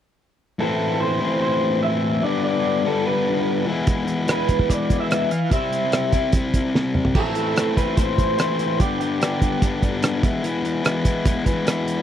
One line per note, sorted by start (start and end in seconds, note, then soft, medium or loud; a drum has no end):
0.59 1.19 A2 medium
0.59 1.20 E3 medium
0.59 1.20 A3 medium
0.59 1.20 C4 medium
0.59 1.19 E4 medium
0.59 1.02 A4 medium
1.00 1.41 C5 medium
1.20 2.23 A2 medium
1.20 2.23 E3 medium
1.20 2.23 A3 medium
1.20 2.23 C4 medium
1.20 2.22 E4 medium
1.42 1.82 C5 medium
1.83 2.21 E5 medium
2.23 2.84 G2 medium
2.23 2.84 D3 medium
2.23 2.85 G3 medium
2.23 2.85 B3 medium
2.23 2.84 D4 medium
2.23 2.43 D5 medium
2.44 2.87 D5 medium
2.85 3.67 G2 medium
2.85 3.66 D3 medium
2.85 3.66 G3 medium
2.85 3.66 B3 medium
2.85 3.66 D4 medium
2.85 3.05 A4 medium
3.07 3.64 B4 medium
3.66 4.28 E3 medium
3.66 4.28 G#3 medium
3.66 4.28 B3 medium
3.66 4.31 E4 medium
3.87 kick medium
3.87 closed hi-hat medium
4.08 closed hi-hat medium
4.28 5.50 E3 medium
4.28 5.30 G#3 medium
4.28 5.31 B3 medium
4.28 5.53 E4 medium
4.28 4.72 B4 medium
4.28 cross-stick medium
4.28 closed hi-hat medium
4.49 kick medium
4.49 closed hi-hat soft
4.59 kick medium
4.70 5.00 D5 medium
4.70 kick medium
4.70 closed hi-hat medium
4.90 kick medium
4.90 closed hi-hat medium
5.00 5.31 E5 medium
5.11 cross-stick medium
5.11 closed hi-hat medium
5.31 5.51 F5 medium
5.31 closed hi-hat medium
5.51 6.12 C3 medium
5.51 6.12 G3 medium
5.51 6.12 C4 medium
5.51 6.11 E4 medium
5.51 6.30 E5 medium
5.51 kick medium
5.51 closed hi-hat medium
5.73 closed hi-hat medium
5.92 cross-stick medium
5.92 closed hi-hat medium
6.12 7.15 C3 medium
6.12 7.15 G3 medium
6.12 7.15 C4 medium
6.12 7.14 E4 medium
6.12 kick medium
6.12 closed hi-hat medium
6.33 kick loud
6.33 closed hi-hat medium
6.54 kick medium
6.54 closed hi-hat medium
6.75 snare soft
6.95 mid tom medium
7.05 floor tom medium
7.15 7.56 A2 medium
7.15 7.55 E3 medium
7.15 7.37 A3 medium
7.15 7.36 C4 medium
7.15 7.35 E4 medium
7.15 7.74 A4 medium
7.15 kick medium
7.15 crash medium
7.35 7.56 A3 soft
7.35 7.56 C4 medium
7.35 7.57 E4 medium
7.35 closed hi-hat medium
7.56 7.97 E3 medium
7.56 7.78 A3 medium
7.56 7.77 C4 medium
7.56 7.76 E4 medium
7.56 cross-stick medium
7.56 closed hi-hat medium
7.77 7.98 A3 medium
7.77 7.98 C4 medium
7.77 7.99 E4 medium
7.77 7.97 B4 medium
7.77 kick medium
7.77 closed hi-hat medium
7.97 8.39 A2 medium
7.97 8.37 E3 medium
7.97 8.19 A3 medium
7.97 8.18 C4 medium
7.97 8.17 E4 medium
7.97 8.36 C5 medium
7.97 kick loud
7.97 closed hi-hat medium
8.18 8.38 A3 soft
8.18 8.39 C4 medium
8.18 8.39 E4 medium
8.18 kick medium
8.18 closed hi-hat medium
8.37 8.79 E3 medium
8.37 8.79 A3 medium
8.37 8.79 C4 medium
8.37 8.80 E4 medium
8.37 8.79 C5 medium
8.37 cross-stick loud
8.37 closed hi-hat medium
8.59 closed hi-hat medium
8.80 9.21 G2 medium
8.80 9.20 D3 medium
8.80 9.02 G3 medium
8.80 9.02 B3 medium
8.80 9.01 D4 medium
8.80 8.99 G4 medium
8.80 kick loud
8.80 closed hi-hat medium
9.00 9.20 G3 medium
9.00 9.22 B3 medium
9.00 9.22 D4 medium
9.00 9.78 G4 medium
9.00 closed hi-hat medium
9.21 9.61 D3 medium
9.21 9.43 G3 medium
9.21 9.43 B3 medium
9.21 9.41 D4 medium
9.21 cross-stick medium
9.21 closed hi-hat medium
9.41 9.61 G3 medium
9.41 9.62 B3 medium
9.41 9.63 D4 medium
9.41 kick medium
9.41 closed hi-hat medium
9.61 10.03 G2 medium
9.61 10.01 D3 medium
9.61 9.84 G3 medium
9.61 9.83 B3 medium
9.61 9.81 D4 medium
9.61 kick loud
9.61 closed hi-hat medium
9.82 10.02 G3 soft
9.82 10.03 B3 medium
9.82 10.04 D4 medium
9.82 kick medium
9.82 closed hi-hat soft
10.03 10.22 D3 medium
10.03 10.23 G3 medium
10.03 10.23 B3 medium
10.03 10.23 D4 medium
10.03 cross-stick loud
10.03 closed hi-hat medium
10.23 10.43 E3 medium
10.23 10.43 G#3 medium
10.23 10.44 B3 medium
10.23 10.45 E4 medium
10.23 kick medium
10.23 closed hi-hat medium
10.43 10.83 E3 medium
10.43 10.65 G#3 medium
10.43 10.64 B3 medium
10.43 10.63 E4 medium
10.43 closed hi-hat medium
10.63 10.83 G#3 medium
10.63 10.84 B3 medium
10.63 10.86 E4 medium
10.63 closed hi-hat medium
10.84 11.24 E3 medium
10.84 11.06 G#3 medium
10.84 11.04 B3 medium
10.84 11.04 E4 medium
10.84 cross-stick medium
10.84 closed hi-hat medium
11.04 11.24 G#3 medium
11.04 11.25 B3 medium
11.04 11.27 E4 medium
11.04 kick medium
11.04 closed hi-hat medium
11.24 11.65 E3 medium
11.24 11.46 G#3 medium
11.24 11.45 B3 medium
11.24 11.44 E4 medium
11.24 kick loud
11.24 closed hi-hat medium
11.45 11.65 G#3 soft
11.45 11.66 B3 medium
11.45 11.68 E4 medium
11.45 kick medium
11.45 closed hi-hat medium
11.66 12.02 E3 medium
11.66 12.02 G#3 medium
11.66 12.02 B3 medium
11.66 12.02 E4 medium
11.66 cross-stick medium
11.66 closed hi-hat medium
11.88 closed hi-hat medium